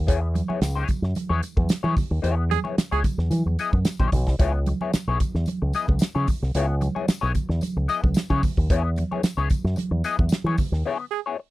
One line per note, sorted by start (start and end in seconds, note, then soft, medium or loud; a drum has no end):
0.07 0.40 E2 loud
0.07 0.27 B3 medium
0.07 0.22 E4 medium
0.07 0.21 G#4 medium
0.07 0.20 C#5 medium
0.07 kick loud
0.07 closed hi-hat loud
0.07 tambourine soft
0.22 muted clean electric guitar stroke soft
0.34 muted clean electric guitar stroke soft
0.34 closed hi-hat medium
0.34 tambourine soft
0.34 muted conga soft
0.34 high conga medium
0.48 0.61 B3 medium
0.48 0.61 E4 medium
0.48 0.62 G#4 medium
0.48 0.62 C#5 medium
0.48 high conga medium
0.61 0.83 C#2 loud
0.61 snare loud
0.61 closed hi-hat medium
0.61 tambourine loud
0.61 muted conga soft
0.75 0.89 B3 medium
0.75 0.89 E4 medium
0.75 0.89 G#4 medium
0.75 0.90 C#5 medium
0.88 kick medium
0.88 closed hi-hat medium
0.88 tambourine medium
0.88 muted conga soft
0.88 high conga soft
0.88 low conga medium
1.02 1.13 F#2 medium
1.02 muted clean electric guitar stroke soft
1.02 snare soft
1.15 muted clean electric guitar stroke soft
1.15 closed hi-hat medium
1.15 tambourine medium
1.15 high conga medium
1.29 1.40 E2 medium
1.29 1.42 B3 medium
1.29 1.43 E4 medium
1.29 1.42 G#4 medium
1.29 1.42 C#5 medium
1.43 closed hi-hat medium
1.43 tambourine medium
1.43 muted conga soft
1.57 1.67 E2 loud
1.57 muted clean electric guitar stroke soft
1.57 kick medium
1.57 high conga medium
1.69 muted clean electric guitar stroke soft
1.69 snare loud
1.69 closed hi-hat loud
1.69 tambourine loud
1.69 muted conga soft
1.83 1.94 E3 medium
1.83 1.96 B3 medium
1.83 1.96 E4 medium
1.83 1.96 G#4 medium
1.83 1.97 C#5 medium
1.83 high conga medium
1.96 kick loud
1.96 open hi-hat medium
1.96 tambourine soft
1.96 muted conga soft
1.96 low conga medium
2.11 2.21 D#2 loud
2.11 muted clean electric guitar stroke soft
2.22 2.56 E2 loud
2.22 2.43 B3 medium
2.22 2.37 E4 medium
2.22 2.36 G#4 medium
2.22 2.36 C#5 loud
2.22 closed hi-hat loud
2.37 muted clean electric guitar stroke soft
2.50 2.60 G#4 loud
2.50 muted clean electric guitar stroke medium
2.50 closed hi-hat medium
2.50 tambourine soft
2.50 high conga medium
2.64 2.76 B3 medium
2.64 2.77 E4 medium
2.64 2.78 G#4 medium
2.64 2.77 C#5 medium
2.64 high conga medium
2.78 muted fingered electric bass stroke soft
2.78 snare loud
2.78 closed hi-hat medium
2.78 tambourine loud
2.78 muted conga soft
2.91 3.02 C#2 medium
2.91 3.04 B3 medium
2.91 3.04 E4 medium
2.91 3.04 G#4 medium
2.91 3.00 G#4 loud
2.91 3.05 C#5 medium
3.04 muted clean electric guitar stroke medium
3.04 kick medium
3.04 closed hi-hat medium
3.04 tambourine medium
3.04 muted conga soft
3.04 high conga soft
3.04 low conga medium
3.18 3.28 E2 medium
3.18 muted clean electric guitar stroke soft
3.18 snare soft
3.30 3.42 E3 loud
3.30 muted clean electric guitar stroke soft
3.30 closed hi-hat medium
3.30 tambourine medium
3.30 high conga medium
3.46 3.56 E2 medium
3.46 muted clean electric guitar stroke soft
3.59 3.78 B3 medium
3.59 3.73 E4 medium
3.59 3.73 G#4 medium
3.59 3.73 D#5 medium
3.59 closed hi-hat medium
3.59 tambourine medium
3.73 3.83 F#2 medium
3.73 muted clean electric guitar stroke soft
3.73 kick medium
3.73 high conga medium
3.85 muted clean electric guitar stroke soft
3.85 snare loud
3.85 closed hi-hat loud
3.85 tambourine loud
3.99 4.09 A#1 medium
3.99 4.11 B3 medium
3.99 4.11 E4 medium
3.99 4.12 G#4 medium
3.99 4.12 C#5 medium
3.99 kick medium
3.99 high conga medium
3.99 low conga medium
4.12 4.27 B1 loud
4.12 kick loud
4.12 open hi-hat medium
4.12 tambourine medium
4.12 low conga medium
4.27 4.37 C2 medium
4.27 muted clean electric guitar stroke soft
4.27 kick medium
4.27 snare soft
4.39 4.71 C#2 loud
4.39 4.58 B3 medium
4.39 4.55 E4 medium
4.39 4.54 G#4 medium
4.39 4.53 C#5 loud
4.39 kick loud
4.39 closed hi-hat loud
4.39 tambourine soft
4.39 muted conga soft
4.54 muted clean electric guitar stroke soft
4.66 muted clean electric guitar stroke soft
4.66 closed hi-hat medium
4.66 tambourine soft
4.66 muted conga soft
4.66 high conga medium
4.81 4.92 B3 medium
4.81 4.92 E4 medium
4.81 4.93 G#4 medium
4.81 4.93 C#5 medium
4.81 high conga medium
4.93 muted fingered electric bass stroke soft
4.93 snare loud
4.93 closed hi-hat medium
4.93 tambourine loud
5.07 5.17 B1 medium
5.07 5.19 B3 medium
5.07 5.20 E4 medium
5.07 5.20 G#4 medium
5.07 5.20 C#5 medium
5.20 muted clean electric guitar stroke medium
5.20 kick medium
5.20 closed hi-hat medium
5.20 tambourine medium
5.20 high conga soft
5.20 low conga medium
5.34 5.44 E2 medium
5.34 muted clean electric guitar stroke soft
5.34 snare soft
5.46 muted clean electric guitar stroke soft
5.46 closed hi-hat medium
5.46 tambourine medium
5.46 muted conga soft
5.46 high conga medium
5.62 5.71 C#2 medium
5.62 muted clean electric guitar stroke soft
5.73 5.93 B3 medium
5.73 5.89 E4 medium
5.73 5.88 G#4 medium
5.73 5.88 D#5 medium
5.73 closed hi-hat medium
5.73 tambourine medium
5.73 muted conga soft
5.88 5.98 C#2 medium
5.88 muted clean electric guitar stroke soft
5.88 kick medium
5.88 high conga medium
5.99 muted clean electric guitar stroke soft
5.99 snare loud
5.99 closed hi-hat loud
5.99 tambourine loud
5.99 muted conga soft
6.15 6.25 C#3 medium
6.15 6.28 B3 medium
6.15 6.28 E4 medium
6.15 6.29 G#4 medium
6.15 6.29 C#5 medium
6.15 high conga medium
6.28 kick medium
6.28 open hi-hat medium
6.28 tambourine medium
6.28 muted conga soft
6.28 low conga medium
6.42 6.52 C2 medium
6.42 muted clean electric guitar stroke soft
6.42 snare soft
6.54 6.87 C#2 loud
6.54 6.74 B3 medium
6.54 6.68 E4 medium
6.54 6.68 G#4 medium
6.54 6.67 C#5 loud
6.54 closed hi-hat loud
6.54 tambourine soft
6.54 muted conga soft
6.68 muted clean electric guitar stroke medium
6.81 muted clean electric guitar stroke medium
6.81 closed hi-hat medium
6.81 tambourine soft
6.81 muted conga soft
6.81 high conga medium
6.95 7.07 B3 medium
6.95 7.07 E4 medium
6.95 7.07 G#4 medium
6.95 7.07 C#5 medium
6.95 high conga medium
7.08 muted fingered electric bass stroke soft
7.08 snare loud
7.08 closed hi-hat medium
7.08 tambourine loud
7.21 7.33 B1 medium
7.21 7.33 B3 medium
7.21 7.34 E4 medium
7.21 7.34 G#4 medium
7.21 7.34 C#5 medium
7.35 kick medium
7.35 closed hi-hat medium
7.35 tambourine medium
7.35 high conga soft
7.35 low conga medium
7.49 7.59 E2 medium
7.49 muted clean electric guitar stroke soft
7.49 snare soft
7.61 muted clean electric guitar stroke soft
7.61 closed hi-hat medium
7.61 tambourine medium
7.61 high conga medium
7.76 7.86 C#2 medium
7.76 muted clean electric guitar stroke soft
7.88 8.08 B3 medium
7.88 8.03 E4 medium
7.88 8.03 G#4 medium
7.88 8.03 D#5 medium
7.88 closed hi-hat medium
7.88 tambourine medium
8.03 8.13 C#2 medium
8.03 muted clean electric guitar stroke soft
8.03 kick medium
8.03 high conga medium
8.14 muted clean electric guitar stroke soft
8.14 snare loud
8.14 closed hi-hat medium
8.14 tambourine loud
8.14 muted conga soft
8.30 8.40 C#3 loud
8.30 8.43 B3 medium
8.30 8.43 E4 medium
8.30 8.44 G#4 medium
8.30 8.44 C#5 medium
8.30 kick medium
8.30 high conga medium
8.43 kick loud
8.43 open hi-hat medium
8.43 tambourine medium
8.43 low conga medium
8.57 8.67 D#2 medium
8.57 muted clean electric guitar stroke soft
8.57 kick medium
8.70 9.02 E2 loud
8.70 8.89 B3 loud
8.70 8.85 E4 loud
8.70 8.84 G#4 medium
8.70 8.83 C#5 loud
8.70 kick loud
8.70 closed hi-hat loud
8.70 tambourine soft
8.85 muted clean electric guitar stroke soft
8.96 muted clean electric guitar stroke soft
8.96 closed hi-hat medium
8.96 tambourine soft
8.96 high conga medium
9.11 9.22 B3 medium
9.11 9.23 E4 medium
9.11 9.23 G#4 medium
9.11 9.23 C#5 medium
9.11 high conga medium
9.23 muted fingered electric bass stroke soft
9.23 snare medium
9.23 closed hi-hat medium
9.23 tambourine loud
9.23 muted conga soft
9.37 9.47 C#2 medium
9.37 9.49 B3 medium
9.37 9.50 E4 medium
9.37 9.51 G#4 medium
9.37 9.50 C#5 medium
9.50 kick medium
9.50 closed hi-hat medium
9.50 tambourine medium
9.50 high conga medium
9.50 low conga medium
9.64 9.74 F#2 loud
9.64 muted clean electric guitar stroke soft
9.64 snare soft
9.76 muted clean electric guitar stroke soft
9.76 closed hi-hat medium
9.76 tambourine medium
9.76 muted conga soft
9.76 high conga medium
9.91 10.01 E2 loud
9.91 muted clean electric guitar stroke soft
10.04 10.23 B3 medium
10.04 10.18 E4 medium
10.04 10.18 G#4 medium
10.04 10.18 D#5 medium
10.04 closed hi-hat medium
10.04 tambourine medium
10.19 10.29 E2 medium
10.19 muted clean electric guitar stroke soft
10.19 kick medium
10.19 high conga medium
10.29 muted clean electric guitar stroke soft
10.29 snare loud
10.29 closed hi-hat loud
10.29 tambourine loud
10.44 10.55 E3 medium
10.44 10.57 B3 medium
10.44 10.57 E4 medium
10.44 10.58 G#4 medium
10.44 10.58 C#5 medium
10.44 high conga medium
10.58 kick loud
10.58 open hi-hat medium
10.58 tambourine medium
10.58 muted conga soft
10.58 low conga medium
10.72 10.82 D#2 medium
10.72 muted clean electric guitar stroke soft
10.72 snare soft
10.85 11.04 B3 medium
10.85 10.99 E4 medium
10.85 10.99 G#4 medium
10.85 10.99 C#5 loud
11.00 muted clean electric guitar stroke soft
11.11 11.20 G#4 medium
11.11 muted clean electric guitar stroke soft
11.26 11.37 B3 medium
11.26 11.38 E4 medium
11.26 11.38 G#4 medium
11.26 11.39 C#5 medium
11.38 muted clean electric guitar stroke soft